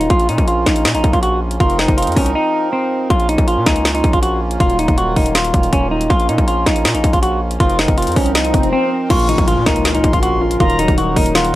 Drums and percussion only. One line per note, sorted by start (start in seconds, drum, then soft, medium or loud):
0.01 closed hi-hat medium
0.10 kick loud
0.10 closed hi-hat medium
0.19 closed hi-hat medium
0.29 closed hi-hat medium
0.38 kick loud
0.38 closed hi-hat medium
0.48 closed hi-hat medium
0.66 kick medium
0.66 snare loud
0.66 clap medium
0.66 closed hi-hat medium
0.76 closed hi-hat medium
0.85 snare loud
0.85 clap loud
0.85 closed hi-hat medium
0.95 closed hi-hat medium
1.04 kick loud
1.04 closed hi-hat medium
1.13 kick medium
1.13 closed hi-hat medium
1.23 closed hi-hat medium
1.51 closed hi-hat medium
1.60 kick loud
1.60 closed hi-hat medium
1.70 closed hi-hat soft
1.79 snare loud
1.79 clap medium
1.79 closed hi-hat medium
1.88 kick loud
1.88 closed hi-hat medium
1.98 closed hi-hat medium
2.02 closed hi-hat medium
2.07 closed hi-hat medium
2.12 closed hi-hat soft
2.16 kick medium
2.16 open hi-hat medium
2.26 closed hi-hat medium
3.10 kick loud
3.10 closed hi-hat medium
3.20 closed hi-hat medium
3.29 closed hi-hat medium
3.38 kick loud
3.38 closed hi-hat medium
3.48 closed hi-hat medium
3.66 kick medium
3.66 snare loud
3.66 clap medium
3.66 closed hi-hat medium
3.76 closed hi-hat medium
3.85 snare loud
3.85 clap loud
3.85 closed hi-hat medium
3.95 closed hi-hat medium
4.04 kick loud
4.04 closed hi-hat medium
4.13 kick medium
4.13 closed hi-hat medium
4.23 closed hi-hat medium
4.51 closed hi-hat medium
4.60 kick loud
4.60 closed hi-hat medium
4.70 closed hi-hat soft
4.79 closed hi-hat medium
4.88 kick loud
4.88 closed hi-hat medium
4.98 closed hi-hat medium
5.16 kick medium
5.16 open hi-hat medium
5.26 closed hi-hat medium
5.35 snare loud
5.35 clap loud
5.35 closed hi-hat medium
5.44 closed hi-hat medium
5.54 kick loud
5.54 closed hi-hat medium
5.63 closed hi-hat medium
5.73 kick medium
5.73 closed hi-hat medium
6.01 closed hi-hat medium
6.10 kick loud
6.10 closed hi-hat medium
6.20 closed hi-hat medium
6.29 closed hi-hat medium
6.38 kick loud
6.38 closed hi-hat medium
6.48 closed hi-hat medium
6.66 kick medium
6.66 snare loud
6.66 clap medium
6.66 closed hi-hat medium
6.76 closed hi-hat medium
6.85 snare loud
6.85 clap loud
6.85 closed hi-hat medium
6.95 closed hi-hat medium
7.04 kick loud
7.04 closed hi-hat medium
7.13 kick medium
7.13 closed hi-hat medium
7.23 closed hi-hat medium
7.51 closed hi-hat medium
7.60 kick loud
7.60 closed hi-hat medium
7.70 closed hi-hat soft
7.79 snare loud
7.79 clap medium
7.79 closed hi-hat medium
7.88 kick loud
7.88 closed hi-hat medium
7.98 closed hi-hat medium
8.02 closed hi-hat medium
8.07 closed hi-hat medium
8.12 closed hi-hat soft
8.16 kick medium
8.16 open hi-hat medium
8.26 closed hi-hat medium
8.35 snare loud
8.35 clap loud
8.35 closed hi-hat medium
8.45 closed hi-hat medium
8.54 kick loud
8.54 closed hi-hat medium
8.63 closed hi-hat medium
9.10 kick loud
9.10 closed hi-hat medium
9.10 crash loud
9.19 closed hi-hat medium
9.29 closed hi-hat medium
9.38 kick loud
9.38 closed hi-hat medium
9.48 closed hi-hat medium
9.66 kick medium
9.66 snare loud
9.66 clap medium
9.66 closed hi-hat medium
9.76 closed hi-hat medium
9.85 snare loud
9.85 clap medium
9.85 closed hi-hat medium
9.95 closed hi-hat medium
10.04 kick loud
10.04 closed hi-hat medium
10.13 kick medium
10.13 closed hi-hat medium
10.23 closed hi-hat medium
10.51 closed hi-hat medium
10.60 kick loud
10.60 closed hi-hat medium
10.70 closed hi-hat medium
10.79 closed hi-hat medium
10.88 kick loud
10.88 closed hi-hat medium
10.98 closed hi-hat medium
11.16 kick medium
11.16 open hi-hat medium
11.26 closed hi-hat medium
11.35 snare loud
11.35 clap loud
11.35 closed hi-hat medium
11.45 closed hi-hat medium